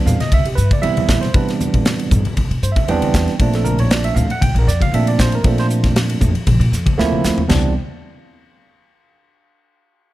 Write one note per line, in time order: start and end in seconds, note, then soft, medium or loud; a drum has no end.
0.00 0.17 E3 medium
0.00 0.17 G3 medium
0.00 0.17 B3 medium
0.00 0.18 C4 medium
0.00 0.18 D4 medium
0.06 0.18 E2 medium
0.06 0.20 F5 medium
0.06 hi-hat pedal medium
0.06 low conga medium
0.20 0.32 D#5 medium
0.20 snare soft
0.20 ride medium
0.20 high conga medium
0.32 0.44 C2 medium
0.32 0.46 E5 medium
0.32 kick medium
0.32 ride medium
0.32 high conga medium
0.45 0.56 C2 medium
0.45 0.58 G4 medium
0.45 ride medium
0.55 0.70 G2 medium
0.55 0.70 B4 medium
0.55 hi-hat pedal medium
0.71 0.84 D5 medium
0.71 muted upright bass stroke soft
0.71 kick medium
0.71 ride medium
0.71 high conga medium
0.82 1.29 C3 medium
0.82 1.27 E3 medium
0.82 1.27 G3 medium
0.82 1.27 B3 medium
0.82 1.27 C4 medium
0.82 1.27 E4 medium
0.82 1.19 E5 medium
0.82 ride medium
0.97 ride medium
0.97 high conga medium
1.08 kick medium
1.08 snare loud
1.08 hi-hat pedal medium
1.08 low conga medium
1.21 1.33 C5 medium
1.21 snare soft
1.21 ride medium
1.34 2.03 C3 medium
1.34 2.23 E3 medium
1.34 2.23 G3 medium
1.34 2.23 B3 medium
1.34 2.23 C4 medium
1.34 2.23 D4 medium
1.34 1.50 B4 medium
1.34 kick loud
1.34 ride medium
1.48 snare soft
1.48 ride medium
1.60 hi-hat pedal medium
1.60 high conga medium
1.74 kick medium
1.74 ride medium
1.74 low conga medium
1.85 snare loud
1.85 ride medium
1.99 ride medium
2.11 2.23 G2 medium
2.11 kick medium
2.11 hi-hat pedal medium
2.11 low conga medium
2.25 muted upright bass stroke soft
2.25 ride medium
2.25 high conga medium
2.37 2.49 C2 medium
2.37 kick medium
2.37 ride medium
2.37 high conga medium
2.50 2.61 C3 medium
2.50 ride medium
2.62 2.75 G2 medium
2.62 2.71 C5 medium
2.62 hi-hat pedal medium
2.72 2.87 E5 medium
2.76 muted upright bass stroke soft
2.76 kick medium
2.76 ride medium
2.76 high conga medium
2.88 3.00 E2 medium
2.88 3.32 E3 medium
2.88 3.33 G3 medium
2.88 3.33 B3 medium
2.88 3.33 C4 medium
2.88 3.34 D4 loud
2.88 3.36 G5 medium
2.88 ride medium
3.02 muted upright bass stroke soft
3.02 ride medium
3.02 high conga medium
3.14 3.26 E2 medium
3.14 kick medium
3.14 snare loud
3.14 hi-hat pedal medium
3.27 muted upright bass stroke soft
3.27 snare soft
3.27 ride soft
3.39 4.08 A#1 medium
3.39 4.28 F3 medium
3.39 4.29 A3 medium
3.39 4.28 A#3 medium
3.39 4.29 C4 medium
3.39 4.29 D4 medium
3.39 kick loud
3.39 ride medium
3.53 3.66 A4 medium
3.53 snare soft
3.53 ride medium
3.64 3.78 A#4 medium
3.64 hi-hat pedal medium
3.64 high conga medium
3.79 3.91 C#5 medium
3.79 ride medium
3.79 low conga medium
3.91 4.04 D5 medium
3.91 snare loud
3.91 ride medium
4.04 4.16 E5 medium
4.04 ride medium
4.15 4.28 D2 medium
4.15 4.29 F5 medium
4.15 hi-hat pedal medium
4.15 low conga medium
4.30 4.42 F#5 loud
4.30 ride medium
4.41 4.54 A#1 medium
4.41 4.55 G5 medium
4.41 kick medium
4.41 ride medium
4.41 high conga medium
4.54 4.66 A#1 medium
4.54 ride medium
4.59 4.69 A#4 medium
4.67 4.79 F2 medium
4.67 4.81 D5 medium
4.67 snare soft
4.67 hi-hat pedal medium
4.81 4.93 F5 loud
4.81 muted upright bass stroke soft
4.81 kick medium
4.81 ride medium
4.81 high conga medium
4.92 5.38 A#2 medium
4.92 5.37 F3 medium
4.92 5.38 A3 medium
4.92 5.38 A#3 medium
4.92 5.38 C4 medium
4.92 5.38 D4 medium
4.92 5.07 E5 medium
4.92 ride medium
5.07 5.19 D5 medium
5.07 ride medium
5.18 5.33 C5 medium
5.18 kick medium
5.18 snare loud
5.18 hi-hat pedal medium
5.18 low conga medium
5.32 5.45 A#4 medium
5.32 ride medium
5.44 6.13 A#2 medium
5.44 6.33 F3 medium
5.44 6.33 A3 medium
5.44 6.33 A#3 medium
5.44 6.33 C4 medium
5.44 6.34 D4 medium
5.44 5.58 A4 medium
5.44 kick loud
5.44 ride medium
5.58 5.66 C5 loud
5.58 snare soft
5.58 ride medium
5.70 hi-hat pedal medium
5.83 kick medium
5.83 snare soft
5.83 ride medium
5.83 low conga medium
5.96 snare loud
5.96 ride medium
6.10 ride medium
6.21 6.33 F2 medium
6.21 kick medium
6.21 hi-hat pedal medium
6.21 low conga medium
6.35 muted upright bass stroke soft
6.35 ride medium
6.47 6.59 A#1 loud
6.47 kick medium
6.47 ride medium
6.47 high conga medium
6.60 6.71 A#2 medium
6.60 ride medium
6.72 6.84 F2 medium
6.72 snare soft
6.72 hi-hat pedal medium
6.86 muted upright bass stroke soft
6.86 kick medium
6.86 ride medium
6.86 high conga medium
6.98 7.10 D2 medium
6.98 7.42 F3 medium
6.98 7.42 A3 medium
6.98 7.42 A#3 medium
6.98 7.43 C4 medium
6.98 7.43 E4 loud
6.98 snare medium
7.12 muted upright bass stroke soft
7.12 high conga medium
7.24 7.36 D2 medium
7.24 snare medium
7.24 hi-hat pedal medium
7.38 muted upright bass stroke soft
7.38 floor tom medium
7.48 7.73 C2 loud
7.48 7.73 E3 medium
7.48 7.73 G3 medium
7.48 7.73 B3 medium
7.48 7.73 C4 medium
7.48 7.73 D4 medium
7.48 snare loud
7.48 floor tom loud
7.48 crash medium
7.48 high conga medium